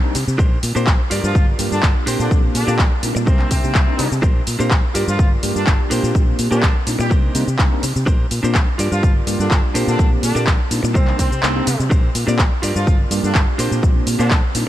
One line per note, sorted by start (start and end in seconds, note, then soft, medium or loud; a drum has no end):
0.03 0.15 G3 medium
0.03 0.15 A#3 medium
0.03 0.15 C4 medium
0.03 0.15 D4 medium
0.03 0.15 D#4 medium
0.14 0.24 C3 medium
0.14 muted clean electric guitar stroke soft
0.14 open hi-hat medium
0.14 shaker medium
0.28 0.35 C3 medium
0.28 shaker soft
0.38 0.56 A#1 loud
0.38 0.57 D4 loud
0.38 0.57 G4 loud
0.38 0.58 A#4 loud
0.38 0.58 C5 loud
0.38 kick loud
0.38 shaker soft
0.63 0.72 A#2 medium
0.63 open hi-hat loud
0.63 shaker medium
0.75 0.89 A#2 loud
0.75 0.87 A#3 medium
0.75 0.87 C4 medium
0.75 0.99 D4 medium
0.75 0.87 D4 medium
0.75 0.87 F4 medium
0.75 1.00 G4 medium
0.75 0.87 G4 loud
0.75 1.00 A#4 medium
0.75 1.00 C5 loud
0.75 shaker soft
0.87 0.96 A#1 medium
0.87 kick loud
0.87 clap loud
0.87 shaker soft
1.10 1.20 G2 medium
1.10 1.19 G3 medium
1.10 1.19 A#3 medium
1.10 1.19 D4 medium
1.10 1.88 F4 medium
1.10 1.19 F4 medium
1.10 1.88 G4 medium
1.10 1.19 G4 medium
1.10 1.88 A#4 medium
1.10 1.89 D5 loud
1.10 open hi-hat loud
1.10 shaker medium
1.24 1.37 G2 loud
1.24 1.44 F3 medium
1.24 1.44 F4 loud
1.24 shaker soft
1.35 1.52 G1 loud
1.35 kick loud
1.35 shaker soft
1.59 1.68 G2 loud
1.59 2.04 G3 medium
1.59 2.04 A#3 medium
1.59 2.04 D4 medium
1.59 2.04 F4 medium
1.59 2.05 G4 loud
1.59 open hi-hat loud
1.59 shaker medium
1.72 1.79 G2 medium
1.72 1.92 D3 medium
1.72 1.92 D4 medium
1.72 shaker soft
1.83 1.92 G1 medium
1.83 kick loud
1.83 clap loud
1.83 shaker soft
2.06 2.15 A#2 medium
2.06 2.64 A#3 medium
2.06 2.64 C4 medium
2.06 2.55 D4 medium
2.06 2.65 D4 medium
2.06 2.65 F4 medium
2.06 2.55 G4 medium
2.06 2.65 G4 medium
2.06 2.55 A#4 medium
2.06 2.56 C5 loud
2.06 open hi-hat loud
2.06 shaker medium
2.20 2.27 A#2 medium
2.20 2.40 D3 medium
2.20 2.40 D4 medium
2.20 shaker soft
2.31 2.48 A#1 loud
2.31 kick loud
2.31 shaker soft
2.55 2.63 A#2 medium
2.55 2.76 D3 medium
2.55 2.76 D4 medium
2.55 open hi-hat loud
2.55 shaker medium
2.67 2.81 A#2 loud
2.67 2.79 A#3 medium
2.67 2.79 C4 medium
2.67 2.91 D4 medium
2.67 2.79 D4 medium
2.67 2.79 F4 medium
2.67 2.92 G4 medium
2.67 2.79 G4 loud
2.67 2.92 A#4 medium
2.67 2.92 D5 medium
2.67 shaker soft
2.79 2.88 A#1 medium
2.79 kick loud
2.79 clap loud
2.79 shaker soft
3.03 3.11 A#2 medium
3.03 3.48 G3 medium
3.03 3.48 A#3 medium
3.03 3.48 C4 medium
3.03 3.48 D4 medium
3.03 3.49 D#4 medium
3.03 open hi-hat loud
3.03 shaker medium
3.15 3.29 A#2 medium
3.15 muted clean electric guitar stroke medium
3.15 shaker soft
3.26 3.44 C2 loud
3.26 3.48 C3 medium
3.26 3.48 C4 medium
3.26 3.63 D4 medium
3.26 3.64 D#4 medium
3.26 3.64 A#4 medium
3.26 3.64 C5 loud
3.26 kick loud
3.26 shaker soft
3.39 clap soft
3.51 4.18 C3 medium
3.51 3.59 C3 medium
3.51 4.18 C4 medium
3.51 kick medium
3.51 open hi-hat loud
3.51 shaker medium
3.63 3.71 C3 medium
3.63 3.85 G3 medium
3.63 3.85 A#3 medium
3.63 3.85 C4 medium
3.63 3.85 D4 medium
3.63 3.85 D#4 medium
3.63 shaker soft
3.75 3.84 C2 medium
3.75 kick loud
3.75 clap loud
3.75 shaker soft
3.87 3.97 G3 medium
3.87 3.97 A#3 medium
3.87 3.97 C4 medium
3.87 3.98 D4 medium
3.87 3.98 D#4 loud
3.98 4.08 C3 medium
3.98 4.07 G3 medium
3.98 4.07 A#3 medium
3.98 4.07 C4 medium
3.98 4.07 D4 medium
3.98 4.07 D#4 medium
3.98 muted clean electric guitar stroke soft
3.98 open hi-hat loud
3.98 shaker medium
4.12 4.19 C3 medium
4.12 shaker soft
4.22 4.40 A#1 loud
4.22 4.41 D4 loud
4.22 4.41 G4 loud
4.22 4.42 A#4 loud
4.22 4.42 C5 loud
4.22 kick loud
4.22 shaker soft
4.47 4.56 A#2 medium
4.47 open hi-hat loud
4.47 shaker medium
4.59 4.73 A#2 loud
4.59 4.71 A#3 medium
4.59 4.71 C4 medium
4.59 4.83 D4 medium
4.59 4.71 D4 medium
4.59 4.71 F4 medium
4.59 4.84 G4 medium
4.59 4.71 G4 loud
4.59 4.84 A#4 medium
4.59 4.84 C5 loud
4.59 shaker soft
4.71 4.80 A#1 loud
4.71 kick loud
4.71 clap loud
4.71 shaker soft
4.94 5.04 G2 medium
4.94 5.03 G3 medium
4.94 5.03 A#3 medium
4.94 5.03 D4 medium
4.94 5.72 F4 loud
4.94 5.03 F4 medium
4.94 5.72 G4 medium
4.94 5.03 G4 medium
4.94 5.72 A#4 medium
4.94 5.73 D5 loud
4.94 open hi-hat medium
4.94 shaker medium
5.08 5.21 G2 medium
5.08 5.28 F3 medium
5.08 5.28 F4 loud
5.08 shaker soft
5.19 5.36 G1 loud
5.19 kick loud
5.19 shaker soft
5.43 5.52 G2 loud
5.43 5.88 G3 medium
5.43 5.88 A#3 medium
5.43 5.88 D4 medium
5.43 5.88 F4 medium
5.43 5.89 G4 loud
5.43 open hi-hat loud
5.43 shaker medium
5.56 5.63 G2 medium
5.56 5.76 D3 medium
5.56 5.76 D4 medium
5.56 shaker soft
5.67 5.76 G1 medium
5.67 kick loud
5.67 clap loud
5.67 shaker soft
5.90 6.00 A#2 medium
5.90 6.48 A#3 medium
5.90 6.49 C4 medium
5.90 6.39 D4 loud
5.90 6.49 D4 medium
5.90 6.49 F4 medium
5.90 6.39 G4 medium
5.90 6.49 G4 medium
5.90 6.39 A#4 medium
5.90 6.40 C5 loud
5.90 open hi-hat medium
5.90 shaker medium
6.03 6.11 A#2 loud
6.03 shaker soft
6.15 6.32 A#1 loud
6.15 kick loud
6.15 shaker soft
6.39 6.47 A#2 medium
6.39 open hi-hat loud
6.39 shaker medium
6.51 6.64 A#2 loud
6.51 6.72 D3 medium
6.51 6.63 A#3 medium
6.51 6.63 C4 medium
6.51 6.75 D4 medium
6.51 6.72 D4 medium
6.51 6.63 D4 medium
6.51 6.63 F4 medium
6.51 6.76 G4 medium
6.51 6.63 G4 loud
6.51 6.76 A#4 medium
6.51 6.76 C5 medium
6.51 shaker soft
6.63 6.71 A#1 medium
6.63 kick loud
6.63 clap loud
6.63 shaker soft
6.86 6.95 A#2 medium
6.86 7.32 G3 medium
6.86 7.32 A#3 medium
6.86 7.32 C4 medium
6.86 7.32 D4 medium
6.86 7.32 D#4 medium
6.86 open hi-hat medium
6.86 shaker medium
6.99 7.12 A#2 medium
6.99 7.16 G3 medium
6.99 7.16 G4 medium
6.99 muted clean electric guitar stroke medium
6.99 shaker soft
7.10 7.28 C2 loud
7.10 7.47 D4 medium
7.10 7.47 D#4 medium
7.10 7.48 A#4 medium
7.10 7.48 C5 loud
7.10 kick loud
7.10 shaker soft
7.34 7.43 C3 loud
7.34 7.43 G3 medium
7.34 7.43 A#3 medium
7.34 7.43 C4 medium
7.34 7.43 D4 medium
7.34 7.43 D#4 medium
7.34 open hi-hat loud
7.34 shaker medium
7.47 7.55 C3 medium
7.47 shaker soft
7.59 7.68 C2 medium
7.59 7.70 G3 medium
7.59 7.70 A#3 medium
7.59 7.70 C4 medium
7.59 7.70 D4 medium
7.59 7.70 D#4 medium
7.59 kick loud
7.59 clap loud
7.59 shaker soft
7.71 7.83 G3 medium
7.71 7.83 A#3 medium
7.71 7.83 C4 medium
7.71 7.83 D4 medium
7.71 7.83 D#4 medium
7.82 7.92 C3 medium
7.82 muted clean electric guitar stroke soft
7.82 open hi-hat medium
7.82 shaker medium
7.96 8.03 C3 medium
7.96 shaker soft
8.06 8.24 A#1 loud
8.06 8.25 D4 loud
8.06 8.25 G4 loud
8.06 8.26 A#4 loud
8.06 8.26 C5 loud
8.06 kick loud
8.06 shaker soft
8.31 8.40 A#2 loud
8.31 open hi-hat loud
8.31 shaker medium
8.43 8.57 A#2 loud
8.43 8.55 A#3 medium
8.43 8.55 C4 medium
8.43 8.67 D4 medium
8.43 8.55 D4 medium
8.43 8.55 F4 medium
8.43 8.68 G4 medium
8.43 8.55 G4 loud
8.43 8.68 A#4 medium
8.43 8.68 C5 medium
8.43 shaker soft
8.55 8.64 A#1 loud
8.55 kick loud
8.55 clap loud
8.55 shaker soft
8.78 8.87 G2 medium
8.78 8.87 G3 medium
8.78 8.87 A#3 medium
8.78 8.87 D4 medium
8.78 9.56 F4 loud
8.78 8.87 F4 medium
8.78 9.56 G4 medium
8.78 8.87 G4 medium
8.78 9.56 A#4 medium
8.78 9.57 D5 loud
8.78 open hi-hat medium
8.78 shaker medium
8.92 9.05 G2 loud
8.92 9.12 F3 medium
8.92 9.12 F4 medium
8.92 shaker soft
9.03 9.20 G1 loud
9.03 kick loud
9.03 shaker soft
9.27 9.36 G2 loud
9.27 9.72 G3 medium
9.27 9.72 A#3 medium
9.27 9.72 D4 medium
9.27 9.72 F4 medium
9.27 9.73 G4 loud
9.27 open hi-hat loud
9.27 shaker medium
9.39 9.47 G2 medium
9.39 9.60 D3 medium
9.39 9.60 D4 medium
9.39 shaker soft
9.51 9.60 G1 medium
9.51 kick loud
9.51 clap loud
9.51 shaker soft
9.74 9.83 A#2 medium
9.74 10.32 A#3 medium
9.74 10.33 C4 medium
9.74 10.23 D4 medium
9.74 10.33 D4 medium
9.74 10.33 F4 medium
9.74 10.23 G4 medium
9.74 10.33 G4 medium
9.74 10.23 A#4 medium
9.74 10.24 C5 loud
9.74 open hi-hat medium
9.74 shaker medium
9.87 9.95 A#2 medium
9.87 10.08 D3 medium
9.87 10.08 D4 medium
9.87 shaker soft
9.99 10.16 A#1 loud
9.99 kick loud
9.99 shaker soft
10.23 10.31 A#2 medium
10.23 10.44 D3 medium
10.23 10.44 D4 medium
10.23 open hi-hat loud
10.23 shaker medium
10.35 10.49 A#2 loud
10.35 10.47 A#3 medium
10.35 10.47 C4 medium
10.35 10.59 D4 medium
10.35 10.47 D4 medium
10.35 10.47 F4 medium
10.35 10.60 G4 medium
10.35 10.47 G4 loud
10.35 10.60 A#4 medium
10.35 10.60 D5 loud
10.35 shaker soft
10.47 10.56 A#1 loud
10.47 kick loud
10.47 clap loud
10.47 shaker soft
10.71 10.79 A#2 medium
10.71 11.16 G3 medium
10.71 11.16 A#3 medium
10.71 11.16 C4 medium
10.71 11.17 D4 medium
10.71 11.17 D#4 medium
10.71 open hi-hat medium
10.71 shaker medium
10.83 10.97 A#2 loud
10.83 muted clean electric guitar stroke medium
10.83 shaker soft
10.94 11.12 C2 loud
10.94 11.16 C4 medium
10.94 11.31 D4 medium
10.94 11.32 D#4 medium
10.94 11.32 A#4 medium
10.94 11.32 C5 loud
10.94 kick loud
10.94 shaker soft
11.07 clap soft
11.19 11.28 C3 loud
11.19 11.27 G3 medium
11.19 11.27 A#3 medium
11.19 11.86 C4 loud
11.19 11.27 C4 medium
11.19 11.27 D4 medium
11.19 11.27 D#4 medium
11.19 kick medium
11.19 open hi-hat loud
11.19 shaker medium
11.32 11.39 C3 medium
11.32 shaker soft
11.43 11.60 C2 medium
11.43 11.54 G3 medium
11.43 11.54 A#3 medium
11.43 11.54 C4 medium
11.43 11.54 D4 medium
11.43 11.54 D#4 medium
11.43 clap loud
11.43 shaker soft
11.55 11.67 G3 medium
11.55 11.67 A#3 medium
11.55 11.67 C4 medium
11.55 11.67 D4 medium
11.55 11.67 D#4 medium
11.66 11.76 C3 loud
11.66 muted clean electric guitar stroke soft
11.66 open hi-hat medium
11.66 shaker medium
11.80 11.87 C3 medium
11.80 shaker soft
11.90 12.08 A#1 loud
11.90 12.09 D4 loud
11.90 12.09 G4 loud
11.90 12.10 A#4 loud
11.90 12.10 C5 loud
11.90 kick loud
11.90 shaker soft
12.15 12.24 A#2 loud
12.15 open hi-hat loud
12.15 shaker medium
12.27 12.41 A#2 loud
12.27 12.39 A#3 medium
12.27 12.39 C4 medium
12.27 12.51 D4 medium
12.27 12.39 D4 medium
12.27 12.39 F4 medium
12.27 12.52 G4 medium
12.27 12.39 G4 loud
12.27 12.52 A#4 medium
12.27 12.52 D5 loud
12.27 shaker soft
12.39 12.48 A#1 loud
12.39 kick loud
12.39 clap loud
12.39 shaker soft
12.62 12.71 G2 medium
12.62 12.71 G3 medium
12.62 12.71 A#3 medium
12.62 12.71 D4 medium
12.62 13.40 F4 medium
12.62 12.71 F4 medium
12.62 13.40 G4 medium
12.62 12.71 G4 medium
12.62 13.40 A#4 medium
12.62 13.41 D5 loud
12.62 open hi-hat medium
12.62 shaker medium
12.76 12.89 G2 loud
12.76 12.96 F3 medium
12.76 12.96 F4 loud
12.76 shaker soft
12.87 13.04 G1 loud
12.87 kick loud
12.87 shaker soft
13.11 13.19 G2 loud
13.11 13.56 G3 medium
13.11 13.56 A#3 medium
13.11 13.56 D4 medium
13.11 13.56 F4 medium
13.11 13.57 G4 loud
13.11 open hi-hat loud
13.11 shaker medium
13.23 13.31 G2 medium
13.23 13.44 D3 medium
13.23 13.44 D4 medium
13.23 shaker soft
13.35 13.44 G1 medium
13.35 kick loud
13.35 clap loud
13.35 shaker soft
13.58 13.67 A#2 medium
13.58 14.16 A#3 medium
13.58 14.17 C4 medium
13.58 14.07 D4 medium
13.58 14.17 D4 medium
13.58 14.17 F4 medium
13.58 14.07 G4 medium
13.58 14.17 G4 medium
13.58 14.07 A#4 medium
13.58 14.08 C5 loud
13.58 open hi-hat medium
13.58 shaker medium
13.71 13.79 A#2 medium
13.71 shaker soft
13.83 14.00 A#1 loud
13.83 kick loud
13.83 shaker soft
14.07 14.15 A#2 loud
14.07 open hi-hat loud
14.07 shaker medium
14.19 14.32 A#2 loud
14.19 14.40 D3 medium
14.19 14.31 A#3 medium
14.19 14.31 C4 medium
14.19 14.43 D4 medium
14.19 14.40 D4 medium
14.19 14.31 D4 medium
14.19 14.31 F4 medium
14.19 14.44 G4 medium
14.19 14.31 G4 loud
14.19 14.44 A#4 medium
14.19 14.44 C5 loud
14.19 shaker soft
14.31 14.39 A#1 medium
14.31 kick loud
14.31 clap loud
14.31 shaker soft
14.55 14.63 A#2 medium
14.55 14.69 G3 medium
14.55 14.69 A#3 medium
14.55 14.69 C4 medium
14.55 14.69 D4 medium
14.55 14.69 D#4 medium
14.55 open hi-hat loud
14.55 shaker medium